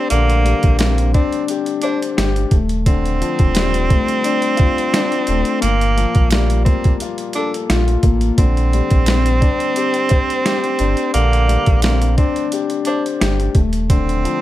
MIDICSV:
0, 0, Header, 1, 5, 480
1, 0, Start_track
1, 0, Key_signature, -2, "major"
1, 0, Tempo, 689655
1, 73, Time_signature, 4, 2, 24, 8
1, 10033, End_track
2, 0, Start_track
2, 0, Title_t, "Grand piano"
2, 0, Program_c, 0, 0
2, 0, Control_c, 0, 64, 127
2, 0, Note_on_c, 0, 60, 72
2, 0, Note_on_c, 0, 62, 76
2, 0, Note_on_c, 0, 67, 99
2, 0, Note_on_c, 0, 72, 88
2, 75, Note_off_c, 0, 60, 0
2, 78, Note_on_c, 0, 50, 89
2, 308, Note_on_c, 0, 55, 74
2, 556, Note_on_c, 0, 60, 75
2, 785, Note_off_c, 0, 62, 0
2, 790, Note_off_c, 0, 72, 0
2, 795, Note_on_c, 0, 62, 102
2, 1031, Note_off_c, 0, 67, 0
2, 1042, Note_on_c, 0, 67, 86
2, 1281, Note_on_c, 0, 72, 90
2, 1501, Note_off_c, 0, 67, 0
2, 1511, Note_on_c, 0, 67, 99
2, 1516, Note_off_c, 0, 50, 0
2, 1751, Note_off_c, 0, 55, 0
2, 1752, Note_off_c, 0, 67, 0
2, 1754, Note_off_c, 0, 62, 0
2, 1755, Note_off_c, 0, 60, 0
2, 1757, Note_off_c, 0, 72, 0
2, 1757, Note_on_c, 0, 57, 85
2, 1763, Control_c, 0, 64, 0
2, 1888, Control_c, 0, 64, 127
2, 1995, Note_off_c, 0, 57, 0
2, 1997, Note_on_c, 0, 50, 89
2, 2236, Note_on_c, 0, 53, 75
2, 2473, Note_on_c, 0, 55, 79
2, 2709, Note_on_c, 0, 57, 98
2, 2954, Note_on_c, 0, 62, 90
2, 3180, Note_on_c, 0, 65, 86
2, 3432, Note_off_c, 0, 62, 0
2, 3435, Note_off_c, 0, 50, 0
2, 3443, Note_on_c, 0, 62, 94
2, 3667, Note_off_c, 0, 57, 0
2, 3674, Note_off_c, 0, 53, 0
2, 3677, Note_on_c, 0, 57, 76
2, 3905, Note_on_c, 0, 46, 91
2, 3907, Note_off_c, 0, 65, 0
2, 3913, Note_off_c, 0, 55, 0
2, 3915, Note_off_c, 0, 57, 0
2, 3918, Note_off_c, 0, 62, 0
2, 3923, Control_c, 0, 64, 0
2, 4037, Control_c, 0, 64, 127
2, 4154, Note_on_c, 0, 53, 74
2, 4396, Note_on_c, 0, 55, 89
2, 4633, Note_on_c, 0, 58, 95
2, 4885, Note_on_c, 0, 65, 80
2, 5122, Note_on_c, 0, 69, 88
2, 5346, Note_off_c, 0, 65, 0
2, 5349, Note_off_c, 0, 46, 0
2, 5356, Note_on_c, 0, 65, 99
2, 5583, Note_off_c, 0, 58, 0
2, 5594, Note_off_c, 0, 53, 0
2, 5594, Note_on_c, 0, 58, 82
2, 5833, Note_off_c, 0, 58, 0
2, 5835, Note_off_c, 0, 55, 0
2, 5835, Note_off_c, 0, 65, 0
2, 5835, Note_on_c, 0, 50, 87
2, 5837, Note_off_c, 0, 69, 0
2, 5841, Control_c, 0, 64, 0
2, 5953, Control_c, 0, 64, 127
2, 6076, Note_on_c, 0, 55, 77
2, 6317, Note_on_c, 0, 60, 74
2, 6549, Note_on_c, 0, 62, 103
2, 6797, Note_on_c, 0, 67, 84
2, 7027, Note_on_c, 0, 72, 87
2, 7264, Note_off_c, 0, 67, 0
2, 7274, Note_off_c, 0, 50, 0
2, 7274, Note_on_c, 0, 67, 101
2, 7501, Note_off_c, 0, 62, 0
2, 7511, Note_on_c, 0, 62, 80
2, 7515, Note_off_c, 0, 55, 0
2, 7755, Note_off_c, 0, 60, 0
2, 7757, Note_on_c, 0, 50, 95
2, 7987, Note_on_c, 0, 55, 71
2, 8235, Note_on_c, 0, 60, 75
2, 8464, Note_off_c, 0, 62, 0
2, 8470, Note_off_c, 0, 72, 0
2, 8475, Note_on_c, 0, 62, 103
2, 8710, Note_off_c, 0, 67, 0
2, 8721, Note_on_c, 0, 67, 84
2, 8960, Note_on_c, 0, 72, 87
2, 9180, Note_off_c, 0, 67, 0
2, 9190, Note_on_c, 0, 67, 96
2, 9195, Note_off_c, 0, 50, 0
2, 9430, Note_off_c, 0, 55, 0
2, 9432, Note_off_c, 0, 67, 0
2, 9434, Note_off_c, 0, 60, 0
2, 9434, Note_off_c, 0, 62, 0
2, 9436, Note_on_c, 0, 57, 87
2, 9437, Note_off_c, 0, 72, 0
2, 9442, Control_c, 0, 64, 0
2, 9550, Control_c, 0, 64, 127
2, 9675, Note_off_c, 0, 57, 0
2, 9676, Note_on_c, 0, 50, 87
2, 9915, Note_on_c, 0, 53, 75
2, 10033, Note_off_c, 0, 50, 0
2, 10033, Note_off_c, 0, 53, 0
2, 10033, End_track
3, 0, Start_track
3, 0, Title_t, "Tenor saxophone"
3, 0, Program_c, 1, 66
3, 69, Note_on_c, 1, 58, 112
3, 524, Note_off_c, 1, 58, 0
3, 551, Note_on_c, 1, 58, 79
3, 768, Note_off_c, 1, 58, 0
3, 791, Note_on_c, 1, 60, 82
3, 1008, Note_off_c, 1, 60, 0
3, 1272, Note_on_c, 1, 62, 81
3, 1393, Note_off_c, 1, 62, 0
3, 1994, Note_on_c, 1, 60, 125
3, 3886, Note_off_c, 1, 60, 0
3, 3910, Note_on_c, 1, 58, 107
3, 4364, Note_off_c, 1, 58, 0
3, 4395, Note_on_c, 1, 58, 80
3, 4610, Note_off_c, 1, 58, 0
3, 4627, Note_on_c, 1, 60, 80
3, 4846, Note_off_c, 1, 60, 0
3, 5118, Note_on_c, 1, 62, 81
3, 5237, Note_off_c, 1, 62, 0
3, 5836, Note_on_c, 1, 60, 117
3, 7727, Note_off_c, 1, 60, 0
3, 7751, Note_on_c, 1, 58, 111
3, 8204, Note_off_c, 1, 58, 0
3, 8231, Note_on_c, 1, 58, 79
3, 8448, Note_off_c, 1, 58, 0
3, 8472, Note_on_c, 1, 60, 82
3, 8689, Note_off_c, 1, 60, 0
3, 8952, Note_on_c, 1, 62, 77
3, 9073, Note_off_c, 1, 62, 0
3, 9675, Note_on_c, 1, 60, 121
3, 10033, Note_off_c, 1, 60, 0
3, 10033, End_track
4, 0, Start_track
4, 0, Title_t, "Sub bass"
4, 0, Program_c, 2, 38
4, 77, Note_on_c, 2, 34, 112
4, 378, Note_off_c, 2, 34, 0
4, 447, Note_on_c, 2, 34, 87
4, 835, Note_off_c, 2, 34, 0
4, 1517, Note_on_c, 2, 31, 97
4, 1710, Note_off_c, 2, 31, 0
4, 1753, Note_on_c, 2, 27, 94
4, 2250, Note_off_c, 2, 27, 0
4, 2367, Note_on_c, 2, 27, 94
4, 2755, Note_off_c, 2, 27, 0
4, 3677, Note_on_c, 2, 27, 97
4, 3784, Note_off_c, 2, 27, 0
4, 3917, Note_on_c, 2, 31, 110
4, 4218, Note_off_c, 2, 31, 0
4, 4287, Note_on_c, 2, 34, 87
4, 4675, Note_off_c, 2, 34, 0
4, 5357, Note_on_c, 2, 34, 98
4, 5549, Note_off_c, 2, 34, 0
4, 5593, Note_on_c, 2, 33, 97
4, 5787, Note_off_c, 2, 33, 0
4, 5835, Note_on_c, 2, 34, 112
4, 6137, Note_off_c, 2, 34, 0
4, 6206, Note_on_c, 2, 34, 89
4, 6595, Note_off_c, 2, 34, 0
4, 7516, Note_on_c, 2, 31, 95
4, 7624, Note_off_c, 2, 31, 0
4, 7756, Note_on_c, 2, 34, 106
4, 8058, Note_off_c, 2, 34, 0
4, 8127, Note_on_c, 2, 34, 89
4, 8515, Note_off_c, 2, 34, 0
4, 9197, Note_on_c, 2, 31, 98
4, 9390, Note_off_c, 2, 31, 0
4, 9433, Note_on_c, 2, 27, 93
4, 9930, Note_off_c, 2, 27, 0
4, 10033, End_track
5, 0, Start_track
5, 0, Title_t, "Drums"
5, 71, Note_on_c, 9, 42, 110
5, 141, Note_off_c, 9, 42, 0
5, 206, Note_on_c, 9, 42, 52
5, 275, Note_off_c, 9, 42, 0
5, 318, Note_on_c, 9, 42, 70
5, 388, Note_off_c, 9, 42, 0
5, 437, Note_on_c, 9, 42, 57
5, 445, Note_on_c, 9, 36, 88
5, 507, Note_off_c, 9, 42, 0
5, 514, Note_off_c, 9, 36, 0
5, 548, Note_on_c, 9, 42, 107
5, 549, Note_on_c, 9, 26, 72
5, 561, Note_on_c, 9, 38, 118
5, 617, Note_off_c, 9, 42, 0
5, 619, Note_off_c, 9, 26, 0
5, 630, Note_off_c, 9, 38, 0
5, 683, Note_on_c, 9, 42, 69
5, 753, Note_off_c, 9, 42, 0
5, 796, Note_on_c, 9, 42, 65
5, 799, Note_on_c, 9, 36, 100
5, 866, Note_off_c, 9, 42, 0
5, 868, Note_off_c, 9, 36, 0
5, 922, Note_on_c, 9, 42, 58
5, 992, Note_off_c, 9, 42, 0
5, 1033, Note_on_c, 9, 42, 92
5, 1102, Note_off_c, 9, 42, 0
5, 1157, Note_on_c, 9, 42, 59
5, 1227, Note_off_c, 9, 42, 0
5, 1264, Note_on_c, 9, 42, 76
5, 1333, Note_off_c, 9, 42, 0
5, 1409, Note_on_c, 9, 42, 60
5, 1479, Note_off_c, 9, 42, 0
5, 1517, Note_on_c, 9, 38, 116
5, 1518, Note_on_c, 9, 42, 106
5, 1520, Note_on_c, 9, 26, 74
5, 1587, Note_off_c, 9, 38, 0
5, 1588, Note_off_c, 9, 42, 0
5, 1590, Note_off_c, 9, 26, 0
5, 1643, Note_on_c, 9, 42, 52
5, 1713, Note_off_c, 9, 42, 0
5, 1748, Note_on_c, 9, 42, 72
5, 1751, Note_on_c, 9, 36, 93
5, 1818, Note_off_c, 9, 42, 0
5, 1821, Note_off_c, 9, 36, 0
5, 1875, Note_on_c, 9, 42, 57
5, 1944, Note_off_c, 9, 42, 0
5, 1992, Note_on_c, 9, 42, 106
5, 1994, Note_on_c, 9, 36, 127
5, 2062, Note_off_c, 9, 42, 0
5, 2064, Note_off_c, 9, 36, 0
5, 2126, Note_on_c, 9, 42, 53
5, 2196, Note_off_c, 9, 42, 0
5, 2239, Note_on_c, 9, 42, 72
5, 2309, Note_off_c, 9, 42, 0
5, 2358, Note_on_c, 9, 42, 58
5, 2365, Note_on_c, 9, 36, 90
5, 2428, Note_off_c, 9, 42, 0
5, 2435, Note_off_c, 9, 36, 0
5, 2469, Note_on_c, 9, 26, 70
5, 2469, Note_on_c, 9, 42, 106
5, 2482, Note_on_c, 9, 38, 113
5, 2539, Note_off_c, 9, 26, 0
5, 2539, Note_off_c, 9, 42, 0
5, 2552, Note_off_c, 9, 38, 0
5, 2604, Note_on_c, 9, 42, 71
5, 2673, Note_off_c, 9, 42, 0
5, 2717, Note_on_c, 9, 42, 69
5, 2719, Note_on_c, 9, 36, 101
5, 2787, Note_off_c, 9, 42, 0
5, 2788, Note_off_c, 9, 36, 0
5, 2843, Note_on_c, 9, 42, 59
5, 2912, Note_off_c, 9, 42, 0
5, 2953, Note_on_c, 9, 42, 91
5, 3023, Note_off_c, 9, 42, 0
5, 3077, Note_on_c, 9, 42, 61
5, 3146, Note_off_c, 9, 42, 0
5, 3183, Note_on_c, 9, 42, 79
5, 3200, Note_on_c, 9, 36, 103
5, 3253, Note_off_c, 9, 42, 0
5, 3270, Note_off_c, 9, 36, 0
5, 3329, Note_on_c, 9, 42, 61
5, 3398, Note_off_c, 9, 42, 0
5, 3436, Note_on_c, 9, 38, 116
5, 3437, Note_on_c, 9, 42, 104
5, 3440, Note_on_c, 9, 26, 74
5, 3506, Note_off_c, 9, 38, 0
5, 3507, Note_off_c, 9, 42, 0
5, 3509, Note_off_c, 9, 26, 0
5, 3563, Note_on_c, 9, 42, 51
5, 3633, Note_off_c, 9, 42, 0
5, 3667, Note_on_c, 9, 42, 75
5, 3737, Note_off_c, 9, 42, 0
5, 3794, Note_on_c, 9, 42, 55
5, 3863, Note_off_c, 9, 42, 0
5, 3912, Note_on_c, 9, 42, 102
5, 3982, Note_off_c, 9, 42, 0
5, 4046, Note_on_c, 9, 42, 51
5, 4116, Note_off_c, 9, 42, 0
5, 4159, Note_on_c, 9, 42, 69
5, 4229, Note_off_c, 9, 42, 0
5, 4278, Note_on_c, 9, 42, 57
5, 4285, Note_on_c, 9, 36, 86
5, 4348, Note_off_c, 9, 42, 0
5, 4355, Note_off_c, 9, 36, 0
5, 4388, Note_on_c, 9, 26, 74
5, 4389, Note_on_c, 9, 42, 109
5, 4402, Note_on_c, 9, 38, 113
5, 4458, Note_off_c, 9, 26, 0
5, 4459, Note_off_c, 9, 42, 0
5, 4472, Note_off_c, 9, 38, 0
5, 4523, Note_on_c, 9, 42, 70
5, 4593, Note_off_c, 9, 42, 0
5, 4637, Note_on_c, 9, 42, 68
5, 4639, Note_on_c, 9, 36, 99
5, 4706, Note_off_c, 9, 42, 0
5, 4708, Note_off_c, 9, 36, 0
5, 4763, Note_on_c, 9, 42, 60
5, 4770, Note_on_c, 9, 36, 97
5, 4832, Note_off_c, 9, 42, 0
5, 4840, Note_off_c, 9, 36, 0
5, 4874, Note_on_c, 9, 42, 90
5, 4944, Note_off_c, 9, 42, 0
5, 4997, Note_on_c, 9, 42, 63
5, 5067, Note_off_c, 9, 42, 0
5, 5104, Note_on_c, 9, 42, 80
5, 5173, Note_off_c, 9, 42, 0
5, 5250, Note_on_c, 9, 42, 63
5, 5319, Note_off_c, 9, 42, 0
5, 5357, Note_on_c, 9, 38, 117
5, 5358, Note_on_c, 9, 42, 100
5, 5360, Note_on_c, 9, 26, 74
5, 5427, Note_off_c, 9, 38, 0
5, 5428, Note_off_c, 9, 42, 0
5, 5430, Note_off_c, 9, 26, 0
5, 5483, Note_on_c, 9, 42, 49
5, 5553, Note_off_c, 9, 42, 0
5, 5588, Note_on_c, 9, 42, 74
5, 5591, Note_on_c, 9, 36, 93
5, 5658, Note_off_c, 9, 42, 0
5, 5661, Note_off_c, 9, 36, 0
5, 5714, Note_on_c, 9, 42, 56
5, 5784, Note_off_c, 9, 42, 0
5, 5832, Note_on_c, 9, 42, 105
5, 5833, Note_on_c, 9, 36, 123
5, 5901, Note_off_c, 9, 42, 0
5, 5903, Note_off_c, 9, 36, 0
5, 5966, Note_on_c, 9, 42, 51
5, 6036, Note_off_c, 9, 42, 0
5, 6079, Note_on_c, 9, 42, 69
5, 6148, Note_off_c, 9, 42, 0
5, 6198, Note_on_c, 9, 42, 56
5, 6205, Note_on_c, 9, 36, 87
5, 6267, Note_off_c, 9, 42, 0
5, 6274, Note_off_c, 9, 36, 0
5, 6308, Note_on_c, 9, 42, 108
5, 6309, Note_on_c, 9, 26, 71
5, 6321, Note_on_c, 9, 38, 115
5, 6378, Note_off_c, 9, 26, 0
5, 6378, Note_off_c, 9, 42, 0
5, 6391, Note_off_c, 9, 38, 0
5, 6443, Note_on_c, 9, 42, 68
5, 6513, Note_off_c, 9, 42, 0
5, 6556, Note_on_c, 9, 42, 69
5, 6558, Note_on_c, 9, 36, 102
5, 6626, Note_off_c, 9, 42, 0
5, 6628, Note_off_c, 9, 36, 0
5, 6683, Note_on_c, 9, 42, 60
5, 6753, Note_off_c, 9, 42, 0
5, 6793, Note_on_c, 9, 42, 93
5, 6863, Note_off_c, 9, 42, 0
5, 6917, Note_on_c, 9, 42, 62
5, 6987, Note_off_c, 9, 42, 0
5, 7024, Note_on_c, 9, 42, 78
5, 7040, Note_on_c, 9, 36, 103
5, 7093, Note_off_c, 9, 42, 0
5, 7110, Note_off_c, 9, 36, 0
5, 7170, Note_on_c, 9, 42, 61
5, 7239, Note_off_c, 9, 42, 0
5, 7278, Note_on_c, 9, 38, 115
5, 7279, Note_on_c, 9, 42, 103
5, 7280, Note_on_c, 9, 26, 77
5, 7347, Note_off_c, 9, 38, 0
5, 7348, Note_off_c, 9, 42, 0
5, 7350, Note_off_c, 9, 26, 0
5, 7404, Note_on_c, 9, 42, 50
5, 7473, Note_off_c, 9, 42, 0
5, 7509, Note_on_c, 9, 42, 75
5, 7578, Note_off_c, 9, 42, 0
5, 7635, Note_on_c, 9, 42, 55
5, 7704, Note_off_c, 9, 42, 0
5, 7753, Note_on_c, 9, 42, 104
5, 7823, Note_off_c, 9, 42, 0
5, 7887, Note_on_c, 9, 42, 53
5, 7957, Note_off_c, 9, 42, 0
5, 7999, Note_on_c, 9, 42, 69
5, 8069, Note_off_c, 9, 42, 0
5, 8118, Note_on_c, 9, 42, 57
5, 8125, Note_on_c, 9, 36, 86
5, 8188, Note_off_c, 9, 42, 0
5, 8195, Note_off_c, 9, 36, 0
5, 8228, Note_on_c, 9, 42, 105
5, 8229, Note_on_c, 9, 26, 74
5, 8241, Note_on_c, 9, 38, 117
5, 8298, Note_off_c, 9, 26, 0
5, 8298, Note_off_c, 9, 42, 0
5, 8311, Note_off_c, 9, 38, 0
5, 8363, Note_on_c, 9, 42, 69
5, 8433, Note_off_c, 9, 42, 0
5, 8476, Note_on_c, 9, 42, 71
5, 8478, Note_on_c, 9, 36, 104
5, 8546, Note_off_c, 9, 42, 0
5, 8548, Note_off_c, 9, 36, 0
5, 8603, Note_on_c, 9, 42, 61
5, 8673, Note_off_c, 9, 42, 0
5, 8713, Note_on_c, 9, 42, 91
5, 8783, Note_off_c, 9, 42, 0
5, 8837, Note_on_c, 9, 42, 59
5, 8907, Note_off_c, 9, 42, 0
5, 8944, Note_on_c, 9, 42, 75
5, 9013, Note_off_c, 9, 42, 0
5, 9089, Note_on_c, 9, 42, 62
5, 9159, Note_off_c, 9, 42, 0
5, 9197, Note_on_c, 9, 38, 112
5, 9198, Note_on_c, 9, 42, 104
5, 9201, Note_on_c, 9, 26, 75
5, 9267, Note_off_c, 9, 38, 0
5, 9268, Note_off_c, 9, 42, 0
5, 9270, Note_off_c, 9, 26, 0
5, 9324, Note_on_c, 9, 42, 49
5, 9394, Note_off_c, 9, 42, 0
5, 9429, Note_on_c, 9, 42, 74
5, 9431, Note_on_c, 9, 36, 93
5, 9498, Note_off_c, 9, 42, 0
5, 9501, Note_off_c, 9, 36, 0
5, 9554, Note_on_c, 9, 42, 58
5, 9624, Note_off_c, 9, 42, 0
5, 9673, Note_on_c, 9, 42, 105
5, 9674, Note_on_c, 9, 36, 125
5, 9743, Note_off_c, 9, 42, 0
5, 9744, Note_off_c, 9, 36, 0
5, 9807, Note_on_c, 9, 42, 52
5, 9877, Note_off_c, 9, 42, 0
5, 9920, Note_on_c, 9, 42, 71
5, 9989, Note_off_c, 9, 42, 0
5, 10033, End_track
0, 0, End_of_file